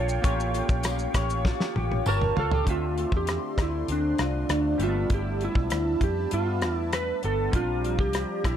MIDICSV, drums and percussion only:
0, 0, Header, 1, 2, 480
1, 0, Start_track
1, 0, Key_signature, -1, "minor"
1, 0, Tempo, 607287
1, 190, Time_signature, 4, 2, 24, 8
1, 6772, End_track
2, 0, Start_track
2, 0, Title_t, "Drums"
2, 70, Note_on_c, 9, 82, 57
2, 149, Note_off_c, 9, 82, 0
2, 190, Note_on_c, 9, 42, 68
2, 190, Note_on_c, 9, 82, 72
2, 191, Note_on_c, 9, 36, 112
2, 269, Note_off_c, 9, 42, 0
2, 269, Note_off_c, 9, 82, 0
2, 270, Note_off_c, 9, 36, 0
2, 317, Note_on_c, 9, 82, 62
2, 396, Note_off_c, 9, 82, 0
2, 430, Note_on_c, 9, 42, 43
2, 430, Note_on_c, 9, 82, 45
2, 509, Note_off_c, 9, 42, 0
2, 509, Note_off_c, 9, 82, 0
2, 545, Note_on_c, 9, 82, 55
2, 546, Note_on_c, 9, 36, 104
2, 624, Note_off_c, 9, 82, 0
2, 626, Note_off_c, 9, 36, 0
2, 660, Note_on_c, 9, 42, 63
2, 660, Note_on_c, 9, 82, 73
2, 669, Note_on_c, 9, 54, 73
2, 672, Note_on_c, 9, 37, 86
2, 739, Note_off_c, 9, 42, 0
2, 739, Note_off_c, 9, 82, 0
2, 748, Note_off_c, 9, 54, 0
2, 751, Note_off_c, 9, 37, 0
2, 781, Note_on_c, 9, 82, 48
2, 860, Note_off_c, 9, 82, 0
2, 905, Note_on_c, 9, 36, 82
2, 905, Note_on_c, 9, 42, 57
2, 905, Note_on_c, 9, 82, 57
2, 907, Note_on_c, 9, 37, 96
2, 984, Note_off_c, 9, 36, 0
2, 984, Note_off_c, 9, 42, 0
2, 984, Note_off_c, 9, 82, 0
2, 986, Note_off_c, 9, 37, 0
2, 1026, Note_on_c, 9, 82, 58
2, 1105, Note_off_c, 9, 82, 0
2, 1145, Note_on_c, 9, 36, 98
2, 1149, Note_on_c, 9, 38, 57
2, 1224, Note_off_c, 9, 36, 0
2, 1228, Note_off_c, 9, 38, 0
2, 1268, Note_on_c, 9, 38, 57
2, 1347, Note_off_c, 9, 38, 0
2, 1390, Note_on_c, 9, 48, 66
2, 1469, Note_off_c, 9, 48, 0
2, 1514, Note_on_c, 9, 48, 60
2, 1593, Note_off_c, 9, 48, 0
2, 1626, Note_on_c, 9, 54, 75
2, 1631, Note_on_c, 9, 47, 78
2, 1705, Note_off_c, 9, 54, 0
2, 1710, Note_off_c, 9, 47, 0
2, 1751, Note_on_c, 9, 45, 79
2, 1830, Note_off_c, 9, 45, 0
2, 1871, Note_on_c, 9, 43, 94
2, 1950, Note_off_c, 9, 43, 0
2, 1988, Note_on_c, 9, 43, 105
2, 2067, Note_off_c, 9, 43, 0
2, 2108, Note_on_c, 9, 36, 93
2, 2109, Note_on_c, 9, 42, 64
2, 2187, Note_off_c, 9, 36, 0
2, 2188, Note_off_c, 9, 42, 0
2, 2352, Note_on_c, 9, 42, 41
2, 2431, Note_off_c, 9, 42, 0
2, 2466, Note_on_c, 9, 36, 93
2, 2545, Note_off_c, 9, 36, 0
2, 2586, Note_on_c, 9, 42, 61
2, 2598, Note_on_c, 9, 37, 76
2, 2665, Note_off_c, 9, 42, 0
2, 2677, Note_off_c, 9, 37, 0
2, 2827, Note_on_c, 9, 36, 74
2, 2832, Note_on_c, 9, 42, 52
2, 2834, Note_on_c, 9, 37, 75
2, 2906, Note_off_c, 9, 36, 0
2, 2911, Note_off_c, 9, 42, 0
2, 2913, Note_off_c, 9, 37, 0
2, 3070, Note_on_c, 9, 42, 60
2, 3149, Note_off_c, 9, 42, 0
2, 3307, Note_on_c, 9, 42, 50
2, 3313, Note_on_c, 9, 37, 70
2, 3386, Note_off_c, 9, 42, 0
2, 3392, Note_off_c, 9, 37, 0
2, 3551, Note_on_c, 9, 42, 72
2, 3556, Note_on_c, 9, 37, 75
2, 3630, Note_off_c, 9, 42, 0
2, 3635, Note_off_c, 9, 37, 0
2, 3790, Note_on_c, 9, 42, 47
2, 3869, Note_off_c, 9, 42, 0
2, 4030, Note_on_c, 9, 42, 60
2, 4032, Note_on_c, 9, 36, 103
2, 4109, Note_off_c, 9, 42, 0
2, 4111, Note_off_c, 9, 36, 0
2, 4274, Note_on_c, 9, 42, 39
2, 4353, Note_off_c, 9, 42, 0
2, 4390, Note_on_c, 9, 36, 89
2, 4469, Note_off_c, 9, 36, 0
2, 4508, Note_on_c, 9, 42, 67
2, 4520, Note_on_c, 9, 37, 83
2, 4587, Note_off_c, 9, 42, 0
2, 4599, Note_off_c, 9, 37, 0
2, 4750, Note_on_c, 9, 36, 79
2, 4752, Note_on_c, 9, 42, 49
2, 4829, Note_off_c, 9, 36, 0
2, 4831, Note_off_c, 9, 42, 0
2, 4989, Note_on_c, 9, 42, 57
2, 5068, Note_off_c, 9, 42, 0
2, 5229, Note_on_c, 9, 42, 46
2, 5235, Note_on_c, 9, 37, 73
2, 5308, Note_off_c, 9, 42, 0
2, 5314, Note_off_c, 9, 37, 0
2, 5474, Note_on_c, 9, 42, 74
2, 5479, Note_on_c, 9, 37, 78
2, 5553, Note_off_c, 9, 42, 0
2, 5558, Note_off_c, 9, 37, 0
2, 5713, Note_on_c, 9, 42, 41
2, 5792, Note_off_c, 9, 42, 0
2, 5953, Note_on_c, 9, 42, 64
2, 5954, Note_on_c, 9, 36, 105
2, 6032, Note_off_c, 9, 42, 0
2, 6033, Note_off_c, 9, 36, 0
2, 6200, Note_on_c, 9, 42, 43
2, 6279, Note_off_c, 9, 42, 0
2, 6313, Note_on_c, 9, 36, 93
2, 6392, Note_off_c, 9, 36, 0
2, 6429, Note_on_c, 9, 42, 62
2, 6441, Note_on_c, 9, 37, 74
2, 6508, Note_off_c, 9, 42, 0
2, 6520, Note_off_c, 9, 37, 0
2, 6675, Note_on_c, 9, 36, 71
2, 6677, Note_on_c, 9, 42, 52
2, 6679, Note_on_c, 9, 37, 91
2, 6754, Note_off_c, 9, 36, 0
2, 6756, Note_off_c, 9, 42, 0
2, 6758, Note_off_c, 9, 37, 0
2, 6772, End_track
0, 0, End_of_file